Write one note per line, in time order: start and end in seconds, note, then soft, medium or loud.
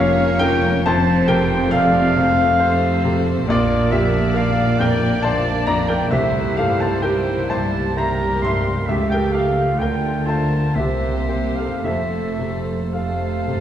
0.00 3.44 F1 medium
0.00 0.81 F2 medium
0.00 3.43 F2 medium
0.00 0.42 F3 medium
0.00 0.81 A#3 medium
0.00 0.85 A#3 medium
0.00 0.80 C#4 medium
0.00 0.85 C#4 medium
0.00 0.86 C#4 medium
0.00 0.86 E4 medium
0.00 0.87 F4 medium
0.00 0.87 G4 medium
0.00 0.86 A4 medium
0.00 0.41 A#4 loud
0.00 0.55 A#4 medium
0.00 0.86 C5 medium
0.00 0.83 C#5 medium
0.00 0.86 C#5 medium
0.00 0.87 E5 medium
0.00 0.43 F5 medium
0.00 0.44 F5 medium
0.00 0.86 F5 medium
0.39 0.85 F3 medium
0.39 0.81 A#4 medium
0.39 0.81 G5 medium
0.39 0.83 G5 medium
0.39 0.74 G5 medium
0.83 3.44 F2 medium
0.83 3.30 A3 medium
0.83 3.44 C4 medium
0.83 1.72 C4 medium
0.83 3.30 F4 medium
0.83 2.60 A4 medium
0.83 1.74 C5 medium
0.83 1.26 C5 medium
0.83 1.29 A5 medium
0.83 1.26 A5 loud
0.83 1.31 A5 medium
1.28 1.98 C3 medium
1.28 1.69 A#4 medium
1.28 1.72 G5 medium
1.28 1.69 G5 medium
1.28 1.73 G5 medium
1.70 2.59 A3 medium
1.70 2.42 A4 medium
1.70 2.18 D5 medium
1.70 3.20 F5 medium
1.70 3.43 F5 medium
1.70 3.19 F5 loud
2.16 2.87 C3 medium
2.16 2.63 C5 medium
2.60 3.46 A3 medium
2.60 3.47 A4 medium
2.60 3.30 C5 medium
2.60 3.46 C5 medium
3.04 3.48 C3 medium
3.47 6.08 A#1 medium
3.47 6.08 A#2 medium
3.47 4.31 A#3 medium
3.47 6.08 A#3 medium
3.47 5.22 D4 medium
3.47 4.32 F4 medium
3.47 3.90 F4 medium
3.47 4.37 A#4 medium
3.47 6.12 D5 medium
3.47 3.92 D5 medium
3.47 3.93 D5 medium
3.47 3.90 D5 medium
3.91 4.62 F2 medium
3.91 4.33 G4 medium
3.91 4.37 E5 medium
3.91 4.33 E5 medium
4.34 6.09 A#3 medium
4.34 6.09 F4 medium
4.34 4.80 A#4 medium
4.34 6.11 D5 medium
4.34 4.78 F5 medium
4.34 4.81 F5 medium
4.34 4.77 F5 medium
4.79 5.50 F2 medium
4.79 5.21 A#4 medium
4.79 5.24 G5 medium
4.79 5.25 G5 medium
4.79 5.21 G5 medium
5.23 6.10 D4 medium
5.23 5.64 C5 medium
5.23 5.66 D5 medium
5.23 5.67 A5 medium
5.23 5.64 A5 medium
5.23 5.67 A5 medium
5.66 6.12 F2 medium
5.66 5.88 D5 medium
5.66 5.91 A#5 medium
5.66 5.89 A#5 medium
5.66 5.87 A#5 medium
5.87 6.10 A#4 medium
5.87 6.10 G5 medium
5.87 6.12 G5 medium
6.10 8.83 C2 medium
6.10 7.46 C3 medium
6.10 8.84 C3 medium
6.10 7.02 A3 medium
6.10 7.01 A#3 medium
6.10 7.93 E4 medium
6.10 7.02 G4 medium
6.10 6.54 G4 medium
6.10 7.65 C5 medium
6.10 7.93 C5 medium
6.10 6.58 E5 medium
6.10 6.54 E5 medium
6.10 6.58 E5 medium
6.56 7.32 G2 soft
6.56 6.79 A4 medium
6.56 6.82 F5 medium
6.56 6.79 F5 medium
6.80 7.03 C5 medium
6.80 7.04 A5 medium
6.80 7.02 A5 medium
7.02 7.95 G3 soft
7.02 7.94 A#3 medium
7.02 7.94 G4 medium
7.02 7.78 G4 soft
7.02 7.47 A#4 soft
7.02 7.51 G5 medium
7.02 7.46 G5 medium
7.02 7.51 G5 medium
7.49 8.24 G2 soft
7.49 7.93 C5 medium
7.49 7.98 A5 medium
7.49 7.96 A5 medium
7.49 7.93 A5 medium
7.95 8.85 G3 medium
7.95 8.85 A#3 medium
7.95 8.85 G4 medium
7.95 8.86 G4 medium
7.95 8.91 A#4 medium
7.95 8.88 A#4 soft
7.95 8.70 C5 soft
7.95 8.41 E5 medium
7.95 8.43 A#5 medium
7.95 8.42 A#5 medium
7.95 8.40 A#5 medium
8.42 8.87 G2 soft
8.42 8.67 C6 medium
8.42 8.89 C6 medium
8.42 8.85 C6 medium
8.46 8.86 E5 medium
8.87 9.75 C#2 medium
8.87 9.76 C#2 medium
8.87 9.75 C#3 soft
8.87 9.74 A3 soft
8.87 9.75 A3 medium
8.87 9.74 G4 medium
8.87 9.10 G4 medium
8.87 9.75 A4 soft
8.87 9.81 A4 medium
8.87 9.09 E5 medium
8.87 9.10 E5 medium
8.87 9.09 E5 medium
9.09 9.33 G5 medium
9.09 9.34 G5 medium
9.09 9.32 G5 medium
9.14 9.33 A#4 soft
9.32 9.75 G4 soft
9.32 9.75 A4 soft
9.32 9.80 F5 medium
9.32 9.80 F5 soft
9.32 9.76 F5 medium
9.78 10.73 D2 soft
9.78 10.76 D2 soft
9.78 10.76 D3 soft
9.78 10.59 A3 soft
9.78 10.74 A3 soft
9.78 10.76 F4 soft
9.78 10.59 F4 soft
9.78 10.78 F4 medium
9.78 10.25 A4 soft
9.78 10.26 G5 medium
9.78 10.28 G5 medium
9.78 10.24 G5 medium
9.83 10.25 A#4 soft
10.25 10.72 F4 soft
10.25 10.72 A4 soft
10.25 10.76 A#4 soft
10.25 10.77 A5 medium
10.25 10.74 A5 medium
10.29 10.74 C5 soft
10.75 11.80 C2 soft
10.75 11.83 C2 soft
10.75 11.84 C3 soft
10.75 11.83 A#3 soft
10.75 11.82 A#3 soft
10.75 11.81 C4 soft
10.75 11.84 G4 soft
10.75 11.83 C5 soft
10.75 11.57 E5 medium
10.75 11.56 E5 medium
10.75 11.52 E5 medium
10.79 11.28 G4 soft
11.29 11.80 G4 soft
11.29 11.80 C5 soft
11.55 11.82 F5 soft
11.55 11.83 F5 soft
11.60 11.84 A4 soft
11.83 13.60 F1 soft
11.83 12.81 F2 soft
11.83 13.60 F2 soft
11.83 12.93 A3 soft
11.83 12.91 A3 soft
11.83 12.91 C4 soft
11.83 12.92 A4 soft
11.83 13.60 A4 soft
11.83 12.91 A4 soft
11.83 12.91 C5 soft
11.83 12.59 E5 medium
11.83 12.90 E5 medium
12.39 13.26 C3 soft
12.93 13.45 F2 soft
12.93 13.60 A3 soft
12.93 13.60 C4 soft
12.93 13.60 A4 soft
12.93 13.60 C5 soft
12.93 13.60 F5 soft
13.47 13.60 G2 soft
13.47 13.60 C3 soft